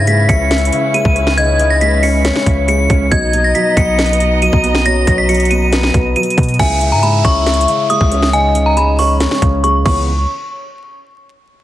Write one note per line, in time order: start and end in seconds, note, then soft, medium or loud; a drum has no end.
0.00 0.27 G#2 loud
0.00 0.73 C#3 loud
0.00 3.08 C#4 medium
0.00 3.08 E4 medium
0.00 3.08 B4 medium
0.00 1.34 E5 loud
0.07 0.92 G#3 medium
0.07 0.24 B6 medium
0.07 closed hi-hat medium
0.29 0.71 C#2 loud
0.29 1.14 C#4 medium
0.29 0.90 C#7 medium
0.29 kick loud
0.29 closed hi-hat medium
0.51 snare loud
0.51 closed hi-hat soft
0.58 closed hi-hat medium
0.65 closed hi-hat medium
0.72 1.36 C#3 medium
0.72 closed hi-hat medium
0.94 1.80 G#3 medium
0.94 1.35 D#7 medium
0.94 closed hi-hat medium
1.05 2.32 C#2 loud
1.05 kick medium
1.16 2.02 C#4 medium
1.16 closed hi-hat medium
1.27 snare loud
1.38 1.58 C#3 medium
1.38 2.21 D#5 loud
1.38 1.68 G#6 loud
1.38 closed hi-hat medium
1.59 2.44 C#3 medium
1.59 closed hi-hat medium
1.70 1.79 A#6 medium
1.81 2.66 G#3 medium
1.81 1.98 B6 medium
1.81 closed hi-hat medium
2.03 2.89 C#4 medium
2.03 2.64 C#7 medium
2.03 open hi-hat medium
2.25 3.08 C#5 loud
2.25 snare loud
2.25 closed hi-hat medium
2.36 snare loud
2.46 2.88 C#2 loud
2.46 3.11 C#3 medium
2.46 kick loud
2.46 closed hi-hat medium
2.68 3.12 G#3 medium
2.68 3.09 C#7 medium
2.68 closed hi-hat medium
2.90 3.11 C#2 loud
2.90 3.12 C#4 medium
2.90 kick medium
2.90 closed hi-hat medium
3.12 3.53 B1 loud
3.12 3.32 B2 medium
3.12 6.56 B3 medium
3.12 6.56 D#5 loud
3.12 4.82 D#5 loud
3.12 6.56 A#5 medium
3.12 3.42 G#6 loud
3.12 kick loud
3.12 closed hi-hat medium
3.33 4.19 B2 medium
3.33 closed hi-hat medium
3.44 3.53 A#6 medium
3.55 4.41 F#3 medium
3.55 3.72 B6 medium
3.55 closed hi-hat medium
3.77 4.50 B1 loud
3.77 4.62 B3 medium
3.77 4.38 C#7 medium
3.77 kick loud
3.77 closed hi-hat medium
3.99 snare loud
3.99 closed hi-hat soft
4.06 closed hi-hat medium
4.13 closed hi-hat medium
4.20 4.85 B2 medium
4.20 closed hi-hat medium
4.42 5.28 F#3 medium
4.42 4.83 D#7 medium
4.42 closed hi-hat medium
4.53 5.05 B1 loud
4.53 kick medium
4.64 5.50 B3 medium
4.64 closed hi-hat medium
4.75 snare loud
4.86 5.06 B2 medium
4.86 5.69 C#5 loud
4.86 5.16 A#6 loud
4.86 closed hi-hat medium
5.07 5.91 B1 loud
5.07 5.93 B2 medium
5.07 kick medium
5.07 closed hi-hat medium
5.18 5.27 B6 medium
5.29 6.15 F#3 medium
5.29 5.46 C#7 medium
5.29 closed hi-hat medium
5.34 closed hi-hat medium
5.40 closed hi-hat medium
5.45 closed hi-hat medium
5.50 6.36 B3 medium
5.50 6.12 D#7 medium
5.50 closed hi-hat medium
5.72 6.55 B4 medium
5.72 snare loud
5.72 closed hi-hat medium
5.83 snare loud
5.94 6.15 B1 loud
5.94 6.59 B2 medium
5.94 kick loud
5.94 closed hi-hat medium
6.16 6.60 F#3 medium
6.16 6.57 D#7 medium
6.16 closed hi-hat soft
6.23 closed hi-hat medium
6.30 closed hi-hat medium
6.38 6.59 B2 loud
6.38 6.59 B3 medium
6.38 kick medium
6.38 closed hi-hat medium
6.43 closed hi-hat medium
6.49 closed hi-hat medium
6.54 closed hi-hat soft
6.59 6.94 C#2 loud
6.59 6.80 C#3 medium
6.59 8.29 E5 loud
6.59 6.90 G#5 loud
6.59 kick loud
6.59 closed hi-hat medium
6.59 crash loud
6.59 downlifter medium
6.81 7.67 C#3 medium
6.81 closed hi-hat medium
6.92 7.23 G#2 loud
6.92 7.01 A#5 medium
7.03 7.88 G#3 medium
7.03 7.20 B5 medium
7.03 closed hi-hat medium
7.25 7.66 C#2 loud
7.25 8.10 C#4 medium
7.25 7.86 C#6 medium
7.25 kick loud
7.25 closed hi-hat medium
7.46 snare loud
7.46 closed hi-hat soft
7.54 closed hi-hat medium
7.61 closed hi-hat medium
7.68 8.32 C#3 medium
7.68 closed hi-hat medium
7.90 8.75 G#3 medium
7.90 8.31 D#6 medium
7.90 closed hi-hat medium
8.01 9.27 C#2 loud
8.01 kick medium
8.12 8.98 C#4 medium
8.12 closed hi-hat medium
8.22 snare loud
8.33 8.53 C#3 loud
8.33 9.16 D#5 loud
8.33 8.64 G#5 loud
8.33 closed hi-hat medium
8.55 9.41 C#3 medium
8.55 closed hi-hat medium
8.66 8.74 A#5 medium
8.77 9.62 G#3 medium
8.77 8.94 B5 medium
8.77 closed hi-hat medium
8.99 9.86 C#4 loud
8.99 9.60 C#6 medium
8.99 open hi-hat medium
9.20 9.82 C#5 medium
9.20 snare loud
9.20 closed hi-hat medium
9.31 snare loud
9.42 9.84 C#2 loud
9.42 9.84 C#3 medium
9.42 kick loud
9.42 closed hi-hat medium
9.64 9.84 G#3 medium
9.64 9.84 C#6 medium
9.64 closed hi-hat medium
9.86 10.26 C#2 loud
9.86 10.06 C#3 medium
9.86 10.06 E3 medium
9.86 10.06 G#3 medium
9.86 10.06 B3 medium
9.86 10.06 C#5 medium
9.86 10.06 C#6 medium
9.86 kick loud
9.86 crash medium